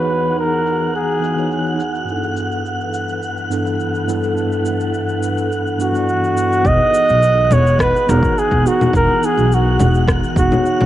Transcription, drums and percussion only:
0.09 cabasa medium
0.24 cabasa soft
0.38 cabasa soft
0.53 cabasa soft
0.67 cabasa medium
0.81 cabasa soft
0.95 cabasa soft
1.10 cabasa soft
1.24 cabasa medium
1.38 cabasa soft
1.51 cabasa soft
1.66 cabasa soft
1.80 cabasa medium
1.95 cabasa soft
2.08 cabasa soft
2.23 cabasa soft
2.37 cabasa medium
2.52 cabasa soft
2.66 cabasa soft
2.81 cabasa soft
2.94 cabasa medium
3.09 cabasa soft
3.22 cabasa soft
3.37 cabasa soft
3.51 cabasa medium
3.67 cabasa soft
3.80 cabasa soft
3.95 cabasa soft
4.09 cabasa medium
4.24 cabasa soft
4.37 cabasa soft
4.52 cabasa soft
4.65 cabasa medium
4.80 cabasa soft
4.94 cabasa soft
5.09 cabasa soft
5.23 cabasa medium
5.38 cabasa soft
5.52 cabasa soft
5.67 cabasa soft
5.80 cabasa medium
5.95 cabasa soft
6.09 cabasa soft
6.24 cabasa soft
6.37 cabasa medium
6.52 cabasa soft
6.65 kick loud
6.65 cabasa soft
6.94 cabasa medium
7.09 cabasa soft
7.22 cabasa soft
7.51 low conga medium
7.51 cabasa medium
7.66 cabasa soft
7.79 kick loud
7.79 cross-stick medium
7.79 cabasa soft
7.96 cabasa soft
8.09 cabasa medium
8.23 kick loud
8.23 cabasa soft
8.38 cabasa soft
8.51 kick medium
8.66 cabasa medium
8.81 low conga medium
8.81 cabasa soft
8.93 kick loud
8.93 cabasa soft
9.23 cabasa medium
9.38 cabasa soft
9.52 cabasa soft
9.79 low conga medium
9.79 cabasa medium
9.95 cabasa soft
10.08 kick loud
10.08 cross-stick medium
10.08 cabasa soft
10.24 cabasa soft
10.36 kick loud
10.36 cabasa medium
10.52 low conga medium
10.52 cabasa soft
10.66 cabasa soft
10.81 low conga medium

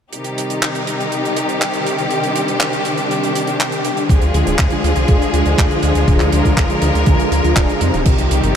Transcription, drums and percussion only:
0.13 closed hi-hat medium
0.24 closed hi-hat soft
0.38 closed hi-hat medium
0.50 closed hi-hat medium
0.63 clap loud
0.63 closed hi-hat medium
0.75 closed hi-hat soft
0.87 closed hi-hat medium
1.00 closed hi-hat soft
1.12 closed hi-hat medium
1.25 closed hi-hat soft
1.36 closed hi-hat medium
1.49 closed hi-hat soft
1.62 clap loud
1.62 closed hi-hat medium
1.73 closed hi-hat medium
1.87 closed hi-hat medium
1.99 closed hi-hat medium
2.10 closed hi-hat medium
2.24 closed hi-hat medium
2.36 closed hi-hat medium
2.48 closed hi-hat medium
2.60 clap loud
2.60 closed hi-hat medium
2.73 closed hi-hat medium
2.85 closed hi-hat medium
2.98 closed hi-hat soft
3.11 closed hi-hat medium
3.23 closed hi-hat medium
3.35 closed hi-hat loud
3.47 closed hi-hat soft
3.60 clap loud
3.60 closed hi-hat medium
3.72 closed hi-hat soft
3.85 closed hi-hat medium
3.97 closed hi-hat soft
4.09 kick loud
4.09 closed hi-hat medium
4.22 closed hi-hat soft
4.34 closed hi-hat medium
4.47 closed hi-hat soft
4.59 kick loud
4.59 clap loud
4.59 closed hi-hat medium
4.70 closed hi-hat soft
4.84 closed hi-hat medium
4.96 closed hi-hat soft
5.08 kick loud
5.08 closed hi-hat medium
5.22 closed hi-hat medium
5.34 closed hi-hat medium
5.46 closed hi-hat soft
5.58 kick loud
5.58 clap loud
5.58 closed hi-hat medium
5.71 closed hi-hat soft
5.83 closed hi-hat medium
5.95 closed hi-hat medium
6.08 kick loud
6.08 closed hi-hat medium
6.20 clap soft
6.20 closed hi-hat soft
6.32 closed hi-hat medium
6.45 kick medium
6.45 closed hi-hat soft
6.57 kick loud
6.57 clap loud
6.57 closed hi-hat medium
6.70 closed hi-hat medium
6.82 closed hi-hat medium
6.95 closed hi-hat medium
7.06 kick loud
7.06 closed hi-hat medium
7.20 closed hi-hat medium
7.32 closed hi-hat medium
7.44 closed hi-hat soft
7.56 kick loud
7.56 clap loud
7.56 closed hi-hat medium
7.69 closed hi-hat soft
7.81 closed hi-hat medium
7.94 closed hi-hat soft
8.05 kick loud
8.05 closed hi-hat medium
8.05 crash medium
8.18 closed hi-hat medium
8.31 closed hi-hat medium
8.44 closed hi-hat soft

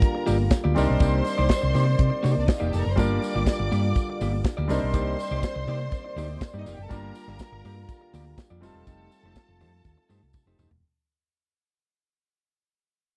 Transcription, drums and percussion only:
0.02 kick loud
0.02 closed hi-hat medium
0.27 open hi-hat medium
0.27 tambourine medium
0.50 kick loud
0.50 snare loud
0.50 closed hi-hat medium
0.50 tambourine medium
0.76 open hi-hat medium
0.76 tambourine medium
1.00 kick loud
1.00 closed hi-hat medium
1.00 tambourine medium
1.25 open hi-hat medium
1.25 tambourine medium
1.49 kick loud
1.49 snare loud
1.49 closed hi-hat medium
1.49 tambourine loud
1.74 open hi-hat medium
1.74 tambourine soft
1.99 kick loud
1.99 closed hi-hat medium
2.24 open hi-hat medium
2.24 tambourine soft
2.48 kick loud
2.48 snare loud
2.48 closed hi-hat medium
2.48 tambourine medium
2.73 snare soft
2.73 open hi-hat medium
2.73 tambourine medium
2.97 kick loud
2.97 closed hi-hat medium
2.97 tambourine medium
3.22 open hi-hat medium
3.22 tambourine medium
3.46 kick loud
3.46 snare loud
3.46 closed hi-hat medium
3.46 tambourine loud
3.72 open hi-hat medium
3.72 tambourine soft
3.96 kick loud
3.96 closed hi-hat medium
3.96 tambourine soft
4.21 open hi-hat medium
4.21 tambourine soft
4.45 kick loud
4.45 snare loud
4.45 closed hi-hat medium
4.45 tambourine medium
4.69 open hi-hat medium
4.69 tambourine medium
4.94 kick loud
4.94 closed hi-hat medium
4.94 tambourine medium
5.19 open hi-hat medium
5.19 tambourine medium
5.43 kick loud
5.43 snare loud
5.43 closed hi-hat medium
5.43 tambourine loud
5.68 open hi-hat medium
5.92 kick loud
5.92 closed hi-hat medium
5.92 tambourine soft
6.17 open hi-hat medium
6.17 tambourine medium
6.41 kick loud
6.41 snare loud
6.41 closed hi-hat medium
6.41 tambourine medium
6.66 snare soft
6.66 open hi-hat medium
6.66 tambourine medium
6.91 kick loud
6.91 closed hi-hat medium
6.91 tambourine medium
7.15 open hi-hat medium
7.15 tambourine medium
7.39 kick loud
7.39 snare loud
7.39 closed hi-hat medium
7.39 tambourine loud
7.65 open hi-hat medium
7.89 kick loud
7.89 closed hi-hat medium
7.89 tambourine soft
8.14 open hi-hat medium
8.14 tambourine medium
8.38 kick loud
8.38 snare loud
8.38 closed hi-hat medium
8.38 tambourine medium
8.63 snare soft
8.63 open hi-hat medium
8.63 tambourine medium
8.87 kick loud
8.87 closed hi-hat medium
8.87 tambourine medium
9.11 open hi-hat medium
9.11 tambourine medium
9.36 kick loud
9.36 snare loud
9.36 closed hi-hat medium
9.36 tambourine loud
9.61 open hi-hat medium
9.84 kick loud
9.84 closed hi-hat medium
9.84 tambourine soft
10.10 open hi-hat medium
10.10 tambourine medium
10.33 kick loud
10.33 high tom medium
10.33 tambourine medium
10.59 mid tom loud
10.59 tambourine medium
10.71 floor tom loud

